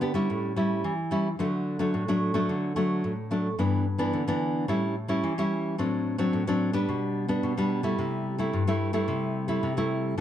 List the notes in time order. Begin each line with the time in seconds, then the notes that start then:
Already playing: D3
0.01 B3 D4 G4
0.14 G3 C#4 E4
0.30 A2
0.56 G3 C#4 E4
0.84 E3
1.11 G3 C#4 E4
1.39 D3 F#3 A3 D4
1.79 F#3 A3 D4
1.94 A2
2.08 F#3 A3 D4
2.34 F#3 A3 D4
2.49 D3
2.76 F#3 A3 D4
3.04 A2
3.31 F#3 A3 D4
3.59 G2 E3 B3 D4
3.98 E3 B3 D4
4.13 D3
4.28 E3 B3 D4
4.68 A2 G3 C#4 E4
5.08 G3 C#4 E4
5.24 E3
5.38 G3 C#4 E4
5.78 A2 F#3 C4 D4
6.18 F#3 C4 D4
6.33 A2
6.47 F#3 C4 D4
6.73 G3 B3 D4
6.89 B2
7.28 G3 B3 D4
7.43 B2
7.57 G3 B3 D4
7.83 G3 A3 E4
7.99 C3
8.38 G3 A3 E4
8.53 G2
8.67 G3 A3 E4
8.93 G3 A3 E4
9.08 C3
9.48 G3 A3 E4
9.63 C3
9.77 G3 A3 E4